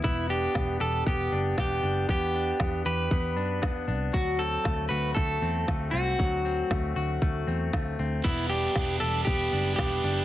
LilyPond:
<<
  \new Staff \with { instrumentName = "Clean electric guitar" } { \time 4/4 \key e \minor \tempo 4 = 117 e'8 g'4 a'8 g'4 g'4 | g'4. b'2 r8 | fis'8 a'4 b'8 a'4. fis'8~ | fis'2.~ fis'8 r8 |
e'8 g'4 a'8 g'4 g'4 | }
  \new Staff \with { instrumentName = "Clean electric guitar" } { \time 4/4 \key e \minor b8 d'8 b8 g'8 b8 d'8 b8 d'8 | b8 d'8 b8 g'8 b8 d'8 b8 d'8 | fis8 c'8 a8 fis'8 a8 c'8 a8 c'8 | fis8 c'8 a8 fis'8 a8 c'8 a8 c'8 |
b8 d'8 b8 g'8 b8 d'8 b8 d'8 | }
  \new Staff \with { instrumentName = "Overdriven electric guitar" } { \clef bass \time 4/4 \key e \minor r1 | r1 | r1 | r1 |
<e, b, e g d' e'>8 <e g d' e'>8 <e g d' e'>8 <e g d' e'>8 <e, b, e g d' e'>8 <e g d' e'>8 <e g d' e'>8 <e g d' e'>8 | }
  \new Staff \with { instrumentName = "Picked electric bass" } { \clef bass \time 4/4 \key e \minor e,,4 e,,8 e,,8 e,,8 fis,,8 e,,8 fis,,8 | e,4 e,8 e,8 e,8 fis,8 e,8 c,8 | d,4 d,8 d,8 d,8 e,8 d,8 c,8 | d,4 d,8 d,8 d,8 e,8 d,8 d,8 |
e,,4 e,,8 e,,8 e,,8 fis,,8 e,,8 fis,,8 | }
  \new DrumStaff \with { instrumentName = "Drums" } \drummode { \time 4/4 <hh bd>8 hho8 <hh bd sn>8 hho8 <hh bd>8 hho8 <hh bd sn>8 hho8 | <hh bd>8 hho8 <hh bd sn>8 hho8 <hh bd>8 hho8 <hh bd sn>8 hho8 | <hh bd>8 hho8 <hh bd sn>8 hho8 <hh bd>8 hho8 <hh bd sn>8 hho8 | <hh bd>8 hho8 <hh bd sn>8 hho8 <hh bd>8 hho8 <hh bd sn>8 hho8 |
<hh bd>8 hho8 <hh bd sn>8 hho8 <hh bd>8 hho8 <hh bd sn>8 hho8 | }
>>